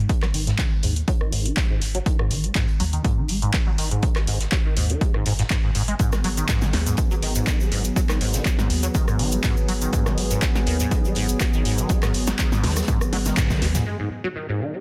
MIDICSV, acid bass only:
0, 0, Header, 1, 2, 480
1, 0, Start_track
1, 0, Key_signature, 5, "minor"
1, 0, Tempo, 491803
1, 92, Time_signature, 4, 2, 24, 8
1, 14451, End_track
2, 0, Start_track
2, 0, Title_t, "Acid bass"
2, 0, Program_c, 0, 38
2, 219, Note_on_c, 0, 54, 94
2, 256, Note_off_c, 0, 54, 0
2, 331, Note_on_c, 0, 51, 76
2, 437, Note_off_c, 0, 51, 0
2, 459, Note_on_c, 0, 44, 70
2, 572, Note_on_c, 0, 51, 80
2, 586, Note_off_c, 0, 44, 0
2, 699, Note_on_c, 0, 56, 76
2, 714, Note_off_c, 0, 51, 0
2, 792, Note_off_c, 0, 56, 0
2, 813, Note_on_c, 0, 44, 72
2, 918, Note_off_c, 0, 44, 0
2, 1052, Note_on_c, 0, 54, 105
2, 1094, Note_off_c, 0, 54, 0
2, 1179, Note_on_c, 0, 51, 79
2, 1272, Note_off_c, 0, 51, 0
2, 1292, Note_on_c, 0, 44, 77
2, 1420, Note_on_c, 0, 51, 81
2, 1435, Note_off_c, 0, 44, 0
2, 1532, Note_on_c, 0, 56, 85
2, 1547, Note_off_c, 0, 51, 0
2, 1637, Note_off_c, 0, 56, 0
2, 1660, Note_on_c, 0, 44, 77
2, 1753, Note_off_c, 0, 44, 0
2, 1900, Note_on_c, 0, 54, 97
2, 1937, Note_off_c, 0, 54, 0
2, 2012, Note_on_c, 0, 51, 86
2, 2118, Note_off_c, 0, 51, 0
2, 2140, Note_on_c, 0, 44, 72
2, 2253, Note_on_c, 0, 51, 74
2, 2267, Note_off_c, 0, 44, 0
2, 2380, Note_on_c, 0, 56, 75
2, 2395, Note_off_c, 0, 51, 0
2, 2473, Note_off_c, 0, 56, 0
2, 2492, Note_on_c, 0, 44, 82
2, 2598, Note_off_c, 0, 44, 0
2, 2732, Note_on_c, 0, 54, 98
2, 2774, Note_off_c, 0, 54, 0
2, 2860, Note_on_c, 0, 51, 80
2, 2952, Note_off_c, 0, 51, 0
2, 2971, Note_on_c, 0, 44, 83
2, 3100, Note_on_c, 0, 51, 77
2, 3114, Note_off_c, 0, 44, 0
2, 3212, Note_on_c, 0, 56, 74
2, 3227, Note_off_c, 0, 51, 0
2, 3318, Note_off_c, 0, 56, 0
2, 3341, Note_on_c, 0, 44, 78
2, 3433, Note_off_c, 0, 44, 0
2, 3580, Note_on_c, 0, 54, 94
2, 3617, Note_off_c, 0, 54, 0
2, 3693, Note_on_c, 0, 51, 74
2, 3798, Note_off_c, 0, 51, 0
2, 3820, Note_on_c, 0, 44, 79
2, 3932, Note_on_c, 0, 51, 88
2, 3947, Note_off_c, 0, 44, 0
2, 4060, Note_on_c, 0, 56, 75
2, 4075, Note_off_c, 0, 51, 0
2, 4152, Note_off_c, 0, 56, 0
2, 4173, Note_on_c, 0, 44, 77
2, 4278, Note_off_c, 0, 44, 0
2, 4412, Note_on_c, 0, 54, 97
2, 4454, Note_off_c, 0, 54, 0
2, 4540, Note_on_c, 0, 51, 79
2, 4633, Note_off_c, 0, 51, 0
2, 4653, Note_on_c, 0, 44, 79
2, 4780, Note_on_c, 0, 51, 76
2, 4795, Note_off_c, 0, 44, 0
2, 4893, Note_on_c, 0, 56, 86
2, 4908, Note_off_c, 0, 51, 0
2, 4998, Note_off_c, 0, 56, 0
2, 5020, Note_on_c, 0, 44, 77
2, 5113, Note_off_c, 0, 44, 0
2, 5133, Note_on_c, 0, 44, 107
2, 5203, Note_off_c, 0, 44, 0
2, 5261, Note_on_c, 0, 44, 101
2, 5297, Note_off_c, 0, 44, 0
2, 5372, Note_on_c, 0, 44, 77
2, 5442, Note_off_c, 0, 44, 0
2, 5500, Note_on_c, 0, 44, 72
2, 5562, Note_off_c, 0, 44, 0
2, 5612, Note_on_c, 0, 44, 74
2, 5682, Note_off_c, 0, 44, 0
2, 5740, Note_on_c, 0, 56, 99
2, 5802, Note_off_c, 0, 56, 0
2, 5852, Note_on_c, 0, 44, 82
2, 5957, Note_off_c, 0, 44, 0
2, 6092, Note_on_c, 0, 54, 100
2, 6134, Note_off_c, 0, 54, 0
2, 6219, Note_on_c, 0, 51, 72
2, 6312, Note_off_c, 0, 51, 0
2, 6332, Note_on_c, 0, 44, 87
2, 6459, Note_on_c, 0, 51, 77
2, 6474, Note_off_c, 0, 44, 0
2, 6572, Note_on_c, 0, 56, 77
2, 6587, Note_off_c, 0, 51, 0
2, 6677, Note_off_c, 0, 56, 0
2, 6700, Note_on_c, 0, 44, 81
2, 6793, Note_off_c, 0, 44, 0
2, 6940, Note_on_c, 0, 54, 107
2, 6977, Note_off_c, 0, 54, 0
2, 7052, Note_on_c, 0, 51, 78
2, 7158, Note_off_c, 0, 51, 0
2, 7180, Note_on_c, 0, 44, 73
2, 7292, Note_on_c, 0, 51, 81
2, 7307, Note_off_c, 0, 44, 0
2, 7420, Note_on_c, 0, 56, 69
2, 7434, Note_off_c, 0, 51, 0
2, 7512, Note_off_c, 0, 56, 0
2, 7532, Note_on_c, 0, 44, 78
2, 7637, Note_off_c, 0, 44, 0
2, 7771, Note_on_c, 0, 54, 102
2, 7814, Note_off_c, 0, 54, 0
2, 7899, Note_on_c, 0, 51, 73
2, 7992, Note_off_c, 0, 51, 0
2, 8012, Note_on_c, 0, 44, 76
2, 8140, Note_on_c, 0, 51, 74
2, 8154, Note_off_c, 0, 44, 0
2, 8252, Note_on_c, 0, 56, 82
2, 8267, Note_off_c, 0, 51, 0
2, 8358, Note_off_c, 0, 56, 0
2, 8380, Note_on_c, 0, 44, 73
2, 8472, Note_off_c, 0, 44, 0
2, 8619, Note_on_c, 0, 54, 105
2, 8657, Note_off_c, 0, 54, 0
2, 8732, Note_on_c, 0, 51, 85
2, 8837, Note_off_c, 0, 51, 0
2, 8860, Note_on_c, 0, 44, 72
2, 8972, Note_on_c, 0, 51, 77
2, 8987, Note_off_c, 0, 44, 0
2, 9100, Note_on_c, 0, 56, 79
2, 9114, Note_off_c, 0, 51, 0
2, 9192, Note_off_c, 0, 56, 0
2, 9212, Note_on_c, 0, 44, 78
2, 9318, Note_off_c, 0, 44, 0
2, 9452, Note_on_c, 0, 54, 97
2, 9494, Note_off_c, 0, 54, 0
2, 9580, Note_on_c, 0, 51, 76
2, 9673, Note_off_c, 0, 51, 0
2, 9692, Note_on_c, 0, 44, 84
2, 9820, Note_on_c, 0, 51, 72
2, 9834, Note_off_c, 0, 44, 0
2, 9932, Note_on_c, 0, 56, 80
2, 9946, Note_off_c, 0, 51, 0
2, 10037, Note_off_c, 0, 56, 0
2, 10059, Note_on_c, 0, 44, 77
2, 10152, Note_off_c, 0, 44, 0
2, 10299, Note_on_c, 0, 54, 104
2, 10337, Note_off_c, 0, 54, 0
2, 10412, Note_on_c, 0, 51, 81
2, 10517, Note_off_c, 0, 51, 0
2, 10540, Note_on_c, 0, 44, 82
2, 10651, Note_on_c, 0, 51, 84
2, 10666, Note_off_c, 0, 44, 0
2, 10779, Note_on_c, 0, 56, 79
2, 10794, Note_off_c, 0, 51, 0
2, 10872, Note_off_c, 0, 56, 0
2, 10892, Note_on_c, 0, 44, 82
2, 10997, Note_off_c, 0, 44, 0
2, 11132, Note_on_c, 0, 54, 99
2, 11174, Note_off_c, 0, 54, 0
2, 11260, Note_on_c, 0, 51, 70
2, 11352, Note_off_c, 0, 51, 0
2, 11372, Note_on_c, 0, 44, 77
2, 11499, Note_on_c, 0, 51, 77
2, 11514, Note_off_c, 0, 44, 0
2, 11612, Note_on_c, 0, 56, 83
2, 11627, Note_off_c, 0, 51, 0
2, 11717, Note_off_c, 0, 56, 0
2, 11739, Note_on_c, 0, 44, 77
2, 11832, Note_off_c, 0, 44, 0
2, 11979, Note_on_c, 0, 54, 96
2, 12017, Note_off_c, 0, 54, 0
2, 12093, Note_on_c, 0, 51, 88
2, 12198, Note_off_c, 0, 51, 0
2, 12220, Note_on_c, 0, 44, 79
2, 12332, Note_on_c, 0, 51, 81
2, 12347, Note_off_c, 0, 44, 0
2, 12459, Note_on_c, 0, 56, 79
2, 12474, Note_off_c, 0, 51, 0
2, 12552, Note_off_c, 0, 56, 0
2, 12571, Note_on_c, 0, 44, 85
2, 12677, Note_off_c, 0, 44, 0
2, 12812, Note_on_c, 0, 54, 102
2, 12854, Note_off_c, 0, 54, 0
2, 12940, Note_on_c, 0, 51, 79
2, 13032, Note_off_c, 0, 51, 0
2, 13051, Note_on_c, 0, 44, 86
2, 13179, Note_on_c, 0, 51, 72
2, 13194, Note_off_c, 0, 44, 0
2, 13291, Note_on_c, 0, 56, 77
2, 13305, Note_off_c, 0, 51, 0
2, 13397, Note_off_c, 0, 56, 0
2, 13420, Note_on_c, 0, 44, 76
2, 13512, Note_off_c, 0, 44, 0
2, 13532, Note_on_c, 0, 56, 80
2, 13637, Note_off_c, 0, 56, 0
2, 13660, Note_on_c, 0, 44, 75
2, 13752, Note_off_c, 0, 44, 0
2, 13900, Note_on_c, 0, 54, 99
2, 13937, Note_off_c, 0, 54, 0
2, 14013, Note_on_c, 0, 51, 82
2, 14118, Note_off_c, 0, 51, 0
2, 14140, Note_on_c, 0, 44, 76
2, 14253, Note_on_c, 0, 51, 73
2, 14267, Note_off_c, 0, 44, 0
2, 14380, Note_on_c, 0, 56, 76
2, 14395, Note_off_c, 0, 51, 0
2, 14451, Note_off_c, 0, 56, 0
2, 14451, End_track
0, 0, End_of_file